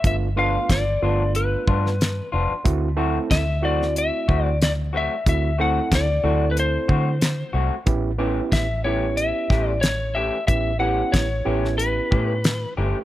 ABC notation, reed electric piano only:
X:1
M:4/4
L:1/8
Q:1/4=92
K:Ador
V:1 name="Reed electric piano"
[A,B,D=F] [A,B,DF] z [A,B,DF]3 z2 | [A,CEF] [A,CEA] z [A,CEF]3 z2 | [A,CEF] [A,CEA] z [A,CEA]3 z2 | [B,^CEG] [B,CEG] z [B,CEG]3 z2 |
[B,^CEG] [B,CEG] z [B,CEG]3 z2 |]